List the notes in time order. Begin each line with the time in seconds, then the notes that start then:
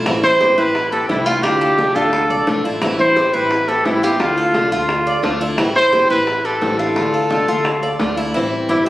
0.06 A1 E3 G3 C4 E4, high bongo
0.23 E4 C5, high bongo
0.41 G1 E3 G3 C4 E4 G4, high bongo
0.58 A1 G3 C4 E4 B4, high bongo
0.75 muted steel-string acoustic guitar stroke, high bongo
0.92 C4 G4 A4, high bongo
1.08 C2 E3 G3 C4 E4, high bongo, low bongo
1.25 G3 A3 C4 E4 F4
1.43 D2 D3 A3 D4 F4 G4, high bongo
1.61 A4, high bongo
1.78 C2 D3 A3 D4 F4, high bongo
1.95 D2 A3 D4 F4 A4, high bongo
2.13 muted steel-string acoustic guitar stroke, high bongo
2.30 C2 D5, high bongo
2.47 B1 D3 A3 D4 F4, high bongo, low bongo
2.64 A1 A3 D4 E4 F4
2.81 A1 E3 G3 C4 E4, high bongo
2.99 E4 C5, high bongo
3.16 G1 E3 G3 C4 E4 G4, high bongo
3.33 A1 G3 C4 E4 B4, high bongo
3.51 muted steel-string acoustic guitar stroke, high bongo
3.68 C4 G4 A4, high bongo
3.85 A1 E3 G3 C4 E4, high bongo, low bongo
4.02 G3 B3 C4 E4 F4 G4
4.20 D2 D3 A3 D4 F4, high bongo
4.37 A4, high bongo
4.54 C2 D3 A3 D4 F4, high bongo
4.71 D2 A3 D4 F4, high bongo
4.89 muted steel-string acoustic guitar stroke, high bongo
5.06 D5, high bongo
5.23 D2 D3 A3 D4 F4, high bongo, low bongo
5.40 A3 D4 E4 F4
5.58 A1 E3 G3 C4 E4, high bongo
5.75 E4 C5, high bongo
5.93 G1 E3 G3 C4 E4 G4, high bongo
6.10 A1 G3 C4 E4 B4, high bongo
6.27 muted steel-string acoustic guitar stroke, high bongo
6.44 C4 G4 A4, high bongo
6.61 A1 E3 G3 C4 E4, high bongo, low bongo
6.79 G3 C4 D4 E4 F4 A4
6.96 D2 D3 A3 D4 F4, high bongo
7.13 A4, high bongo
7.30 C2 D3 A3 D4 F4, high bongo
7.47 D2 A3 D4 F4, high bongo
7.65 muted steel-string acoustic guitar stroke, high bongo
7.82 D5, high bongo
7.99 D2 D3 A3 D4 F4, high bongo, low bongo
8.16 A3 D4 E4 F4
8.34 A1 E3 G3 C4 E4
8.69 G1 E3 G3 C4 E4 G4
8.86 E4 G4